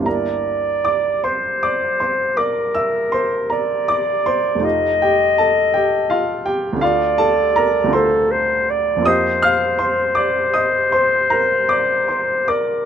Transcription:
0.00 4.56 G1 soft
0.00 4.57 A#3 soft
0.00 4.58 D4 soft
0.00 4.59 E4 soft
0.04 4.60 G4 soft
0.04 0.81 A#4 soft
0.04 1.25 D5 medium
0.04 0.85 A#5 medium
0.85 1.22 D5 soft
0.85 1.24 D6 medium
1.24 2.39 C5 medium
1.24 1.60 C5 soft
1.24 1.62 C6 medium
1.63 1.98 D5 soft
1.63 2.00 D6 medium
2.00 2.36 C5 soft
2.00 2.38 C6 medium
2.37 3.51 A#4 soft
2.37 2.73 D5 medium
2.37 2.75 D6 medium
2.75 3.10 E5 soft
2.75 3.13 E6 medium
3.12 3.48 C5 medium
3.12 3.50 C6 medium
3.50 3.86 A#4 soft
3.50 4.66 D5 medium
3.50 3.88 A#5 medium
3.88 4.24 D5 medium
3.88 4.26 D6 medium
4.26 4.98 C5 soft
4.26 5.02 C6 medium
4.55 6.73 F1 soft
4.55 6.73 A3 soft
4.59 6.75 D#4 soft
4.59 6.09 F4 soft
4.59 5.02 G4 soft
4.65 6.56 D#5 medium
5.02 5.36 G4 medium
5.02 5.39 G5 medium
5.38 5.73 A4 medium
5.38 5.74 A5 medium
5.74 6.08 G4 soft
5.74 6.10 G5 medium
6.10 6.43 F4 soft
6.10 6.45 F5 medium
6.46 6.79 G4 medium
6.46 6.82 G5 medium
6.73 7.82 D2 soft
6.73 7.84 A3 soft
6.73 7.86 D4 soft
6.81 7.16 F4 medium
6.81 7.96 D5 medium
6.81 7.18 F5 medium
7.18 7.54 A4 medium
7.18 7.56 A5 medium
7.56 7.92 A#4 medium
7.56 7.94 A#5 medium
7.84 8.97 D2 soft
7.84 8.98 A3 soft
7.84 8.99 D4 soft
7.90 9.00 F4 soft
7.90 8.68 C6 medium
7.94 8.33 A4 medium
7.94 8.64 C5 medium
8.31 8.72 C5 medium
8.70 9.09 D5 medium
8.96 12.85 F2 soft
8.96 12.85 A#3 soft
8.96 12.85 C4 soft
9.02 12.85 F4 soft
9.02 12.85 G4 soft
9.02 9.42 D#6 medium
9.07 12.51 C5 medium
9.07 9.40 D#5 medium
9.42 9.77 F5 medium
9.42 9.79 F6 medium
9.79 10.14 C5 soft
9.79 10.16 C6 medium
10.15 10.51 D5 medium
10.15 10.53 D6 medium
10.54 10.90 D#5 soft
10.54 10.92 D#6 medium
10.92 11.29 C5 medium
10.92 11.31 C6 medium
11.30 11.68 A#4 medium
11.30 11.70 A#5 medium
11.69 12.06 D5 soft
11.69 12.08 D6 medium
12.08 12.46 C5 soft
12.08 12.49 C6 medium
12.48 12.85 A#4 medium
12.48 12.85 D5 soft
12.48 12.85 D6 medium

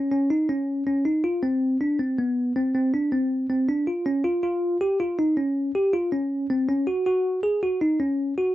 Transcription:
0.12 0.28 C#4 medium
0.30 0.47 D#4 medium
0.49 0.83 C#4 medium
0.87 1.04 C#4 medium
1.05 1.22 D#4 medium
1.24 1.41 F4 medium
1.43 1.76 C4 medium
1.81 1.98 D4 medium
1.99 2.16 C4 medium
2.18 2.52 B3 medium
2.56 2.73 C4 medium
2.75 2.91 C4 medium
2.94 3.10 D4 medium
3.12 3.46 C4 medium
3.50 3.67 C4 medium
3.68 3.85 D4 medium
3.87 4.04 F4 medium
4.06 4.23 C#4 medium
4.24 4.41 F4 medium
4.43 4.77 F4 medium
4.81 4.98 G4 medium
5.00 5.17 F4 medium
5.19 5.35 D#4 medium
5.37 5.71 C#4 medium
5.75 5.92 G4 medium
5.93 6.10 F4 medium
6.12 6.46 C#4 medium
6.50 6.67 C4 medium
6.69 6.85 C#4 medium
6.87 7.04 F#4 medium
7.06 7.40 F#4 medium
7.43 7.60 G#4 medium
7.63 7.79 F#4 medium
7.81 7.98 D#4 medium
8.00 8.33 C#4 medium
8.38 8.54 F#4 medium

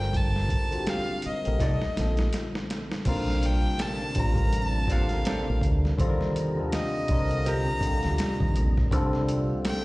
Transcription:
0.00 0.55 G1 loud
0.00 0.64 D3 medium
0.00 0.65 G3 medium
0.00 0.65 C4 medium
0.00 0.66 F4 medium
0.00 0.66 A#4 medium
0.00 0.18 G5 loud
0.13 0.91 A5 medium
0.13 kick loud
0.13 closed hi-hat medium
0.36 snare soft
0.49 kick medium
0.49 closed hi-hat medium
0.70 1.38 D3 medium
0.70 1.39 G3 medium
0.70 1.39 C4 medium
0.70 1.40 F4 medium
0.70 0.78 F#4 medium
0.70 closed hi-hat soft
0.81 1.43 G4 medium
0.87 1.24 F5 loud
0.87 snare loud
0.87 closed hi-hat medium
1.22 2.30 D#5 medium
1.22 closed hi-hat medium
1.26 muted fingered electric bass stroke soft
1.43 1.58 A#1 medium
1.43 1.59 D3 medium
1.43 1.60 G3 medium
1.43 1.60 C4 medium
1.43 1.61 F4 medium
1.43 closed hi-hat soft
1.48 1.61 A#4 medium
1.60 1.78 C2 loud
1.60 1.82 D#4 medium
1.60 1.82 A4 medium
1.60 1.83 D5 medium
1.60 kick medium
1.60 snare medium
1.60 closed hi-hat medium
1.82 muted fingered electric bass stroke soft
1.82 snare medium
1.95 2.99 D3 medium
1.95 3.00 G3 medium
1.95 3.00 C4 medium
1.95 3.01 F4 medium
1.95 snare medium
1.95 closed hi-hat medium
1.99 2.28 A#1 medium
1.99 3.02 A4 medium
2.17 snare medium
2.17 closed hi-hat soft
2.33 snare medium
2.33 closed hi-hat medium
2.55 snare medium
2.70 snare medium
2.70 closed hi-hat medium
2.92 snare medium
2.92 closed hi-hat soft
3.05 3.66 A#1 loud
3.05 3.13 C3 medium
3.05 8.87 C3 medium
3.05 4.10 G3 medium
3.05 5.96 A#3 medium
3.05 4.10 C4 medium
3.05 5.96 D4 medium
3.05 4.11 F4 medium
3.05 3.47 F5 medium
3.05 kick loud
3.05 closed hi-hat medium
3.05 crash medium
3.09 4.12 D3 medium
3.09 4.11 A#4 loud
3.28 snare soft
3.43 3.83 G5 medium
3.43 closed hi-hat medium
3.79 4.21 A5 loud
3.79 snare loud
3.79 closed hi-hat medium
4.15 5.22 A1 medium
4.15 4.84 D3 medium
4.15 4.85 G3 medium
4.15 4.85 C4 medium
4.15 4.86 F4 medium
4.15 kick medium
4.15 closed hi-hat medium
4.19 4.87 A#4 medium
4.19 4.57 A#5 medium
4.36 kick medium
4.36 closed hi-hat soft
4.53 4.94 A5 loud
4.53 closed hi-hat medium
4.88 4.96 C3 medium
4.88 5.92 G3 medium
4.88 5.93 C4 medium
4.88 5.07 C4 medium
4.88 5.07 D4 medium
4.88 5.93 F4 medium
4.88 kick medium
4.88 closed hi-hat medium
4.92 5.95 D3 medium
4.92 5.08 A4 medium
4.92 5.94 A#4 medium
4.92 5.64 F5 medium
5.09 snare soft
5.09 closed hi-hat soft
5.25 5.48 C4 medium
5.25 5.48 D4 medium
5.25 5.49 A4 medium
5.25 snare loud
5.25 closed hi-hat medium
5.50 5.61 A#1 medium
5.61 5.92 D2 medium
5.61 kick medium
5.61 closed hi-hat medium
5.85 snare soft
5.98 6.59 D#2 loud
5.98 6.52 D3 loud
5.98 6.52 G3 medium
5.98 8.89 G3 medium
5.98 6.53 C4 loud
5.98 6.53 F4 loud
5.98 8.88 D#5 medium
5.98 kick loud
5.98 closed hi-hat medium
6.02 6.08 A4 medium
6.09 6.57 A#4 loud
6.21 snare soft
6.36 closed hi-hat medium
6.55 7.05 D3 medium
6.55 7.05 G3 medium
6.55 7.06 C4 medium
6.55 7.07 F4 medium
6.60 7.07 A4 medium
6.72 7.48 D#5 medium
6.72 snare loud
6.72 closed hi-hat medium
7.08 7.69 C2 medium
7.08 7.77 D3 medium
7.08 7.78 G3 medium
7.08 7.78 C4 medium
7.08 7.79 F4 medium
7.08 kick medium
7.08 closed hi-hat medium
7.12 7.79 A#4 medium
7.31 closed hi-hat soft
7.46 7.67 C4 medium
7.46 7.68 G4 loud
7.46 7.68 A#4 loud
7.46 8.56 A#5 loud
7.46 closed hi-hat medium
7.81 8.85 D3 medium
7.81 8.85 G3 medium
7.81 8.86 C4 medium
7.81 8.86 F4 medium
7.81 muted fingered electric bass stroke soft
7.81 kick medium
7.81 closed hi-hat medium
7.86 8.87 G4 medium
8.03 8.17 D2 loud
8.03 snare soft
8.03 closed hi-hat soft
8.18 snare loud
8.18 closed hi-hat medium
8.40 8.53 D#2 medium
8.40 kick medium
8.56 8.92 A#1 medium
8.56 closed hi-hat medium
8.77 kick loud
8.77 snare soft
8.91 9.51 C2 loud
8.91 9.85 D3 loud
8.91 9.85 G3 loud
8.91 9.85 A3 medium
8.91 9.85 C4 medium
8.91 9.85 C4 loud
8.91 9.85 D4 medium
8.91 9.85 F4 loud
8.91 kick loud
8.91 closed hi-hat medium
8.95 9.85 A4 loud
9.13 snare soft
9.29 closed hi-hat medium
9.65 9.85 G5 loud
9.65 snare loud
9.65 closed hi-hat medium

